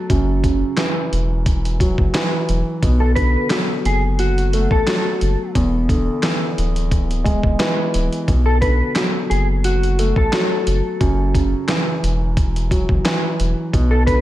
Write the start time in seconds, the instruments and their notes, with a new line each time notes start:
Already playing: grand piano F#3 A3
0.09 sub bass F#1, grand piano F#2, kick, closed hi-hat
0.44 grand piano C#3, kick, closed hi-hat
0.77 grand piano E3, snare, clap, closed hi-hat
1.12 sub bass E1, closed hi-hat
1.46 kick, closed hi-hat
1.65 closed hi-hat
1.80 grand piano F#3, kick, closed hi-hat
1.98 sub bass F#1, kick
2.14 grand piano E3, snare, clap, closed hi-hat
2.49 sub bass E1, closed hi-hat
2.83 sub bass B1, grand piano B2, kick, closed hi-hat
3.00 clean electric guitar A4
3.15 grand piano D3, clean electric guitar B4, kick, closed hi-hat
3.50 grand piano F#3, snare, clap, closed hi-hat
3.85 sub bass F#1, clean electric guitar G#4, closed hi-hat
4.19 clean electric guitar F#4, closed hi-hat
4.38 closed hi-hat
4.53 grand piano A3, closed hi-hat
4.71 sub bass A1, clean electric guitar A4, kick
4.87 grand piano F#3, snare, clap, closed hi-hat
5.21 sub bass F#1, closed hi-hat
5.55 sub bass E1, grand piano E2, kick, closed hi-hat
5.89 grand piano D3, kick, closed hi-hat
6.23 grand piano E3, snare, clap, closed hi-hat
6.58 sub bass D1, closed hi-hat
6.76 closed hi-hat
6.91 kick, closed hi-hat
7.11 closed hi-hat
7.24 grand piano G#3, kick, closed hi-hat
7.43 sub bass E1, kick
7.59 grand piano E3, snare, clap, closed hi-hat
7.94 sub bass D1, closed hi-hat
8.12 closed hi-hat
8.28 sub bass B1, grand piano B2, kick, closed hi-hat
8.46 clean electric guitar A4
8.61 grand piano D3, clean electric guitar B4, kick, closed hi-hat
8.96 grand piano F#3, snare, clap, closed hi-hat
9.30 sub bass F#1, clean electric guitar G#4, closed hi-hat
9.64 clean electric guitar F#4, closed hi-hat
9.83 closed hi-hat
9.99 grand piano A3, closed hi-hat
10.16 sub bass A1, clean electric guitar A4, kick
10.33 grand piano F#3, snare, clap, closed hi-hat
10.67 sub bass F#1, closed hi-hat
11.00 sub bass F#1, grand piano F#2, kick, closed hi-hat
11.35 grand piano C#3, kick, closed hi-hat
11.68 grand piano E3, snare, clap, closed hi-hat
12.03 sub bass E1, closed hi-hat
12.37 kick, closed hi-hat
12.56 closed hi-hat
12.71 grand piano F#3, kick, closed hi-hat
12.89 sub bass F#1, kick
13.05 grand piano E3, snare, clap, closed hi-hat
13.39 sub bass E1, closed hi-hat
13.73 sub bass B1, grand piano B2, kick, closed hi-hat
13.91 clean electric guitar A4
14.07 grand piano D3, clean electric guitar B4, kick, closed hi-hat